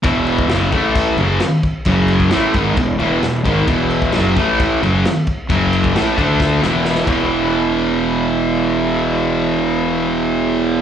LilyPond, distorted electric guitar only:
\new Staff \with { instrumentName = "Distorted electric guitar" } { \clef bass \time 4/4 \key e \mixolydian \tempo 4 = 133 <e, b, e>4 <fis, cis fis>8 <a, e a>4 <fis, cis fis>8 r4 | <fis, cis fis>4 <a, e a>8 <gis, dis gis>8 <e, b,>8 <e, b, e>8 <e, b,>8 <gis, dis gis>8 | <e, b, e>4 <fis, cis fis>8 <a, e a>4 <fis, cis fis>8 r4 | <fis, cis fis>4 <a, e a>8 <d a d'>4 <e, b, e>4 <e, b, e>8~ |
<e, b, e>1~ | <e, b, e>1 | }